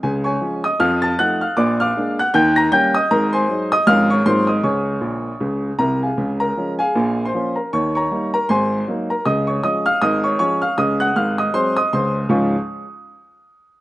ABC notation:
X:1
M:4/4
L:1/16
Q:"Swing" 1/4=156
K:Db
V:1 name="Grand piano"
[Aa]2 [dad']4 [ee']2 [ff']2 [=a=a']2 [gg']2 [ff']2 | [=d=d']2 [fd'f']4 [gg']2 [=g=g']2 [bb']2 [gg']2 [ee']2 | [Bb]2 [cac']4 [ee']2 [ff']2 [dd']2 [cc']2 [ee']2 | [dad']12 [Bb]2 [Afa]2- |
[Afa]2 [Bb]4 [Afa]4- [Afa] [cc']3 [Bb]2 | [dd']2 [dbd']4 [Bb]2 [cac']4 z2 [Bb]2 | [ee']2 [dd']2 [ee']2 [ff']2 [ee']2 [dd']2 [dd']2 [ff']2 | [ee']2 [gg']2 [ff']2 [ee']2 [cc']2 [ee']2 [cc']2 z2 |
[D,,A,,F,A,DFd']2 z12 z2 |]
V:2 name="Grand piano" clef=bass
[D,,D,]4 [F,A,D]4 [F,,F,]4 [F,=A,E]4 | [B,,,B,,]4 [A,B,=D]4 [E,,E,]4 [=G,B,_D]4 | [A,,,A,,]4 [G,A,E]4 [A,,,A,,F,A,D]4 [A,,,A,,G,B,F]4 | [D,,D,]4 [B,,,B,,]4 [D,,D,]4 [C,,C,]4 |
[D,,D,]4 [F,A,D]4 [B,,,B,,]4 [F,B,D]4 | [E,,E,]4 [=G,B,E]4 [A,,,A,,]4 [_G,B,E]4 | [D,,D,]4 [F,A,D]4 [A,,,A,,]4 [F,A,D]4 | [D,,D,]4 [A,,,A,,]4 [G,A,C]4 [D,,D,]4 |
z16 |]